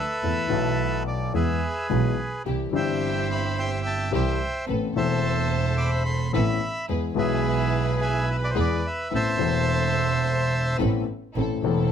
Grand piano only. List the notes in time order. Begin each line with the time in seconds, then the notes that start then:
0.23 E2 E3 A3 B3 A4
0.48 B1 B2 E3 A3 B3 A4
1.33 E2 E3 G#3 B3 G#4
1.89 B1 B2 E3 G#3 B3 G#4
2.45 C2 C3 E3 G3 C4 G4
2.71 G1 G2 E3 G3 C4
2.75 G4
4.12 C2 C3 E3 G3 C4 G4
4.68 A1 A2 E3 B3 C4 A4
4.95 E1 E2 E3 A3 C4 A4
6.33 A1 A2 E3 B3 C4 A4
6.89 E2 E3 G#3 B3 G#4
7.14 B1 B2 E3 G#3 B3
7.18 G#4
8.54 E2 E3 G#3 B3 G#4
9.11 A1 A2 E3 B3 C4 A4
9.37 E1 E2 E3 A3 C4
9.41 A4
10.79 A1 A2 E3 B3 C4 A4
11.36 A1 A2 E3 A3 C4 A4
11.62 E1 E2 E3 A3 C4 A4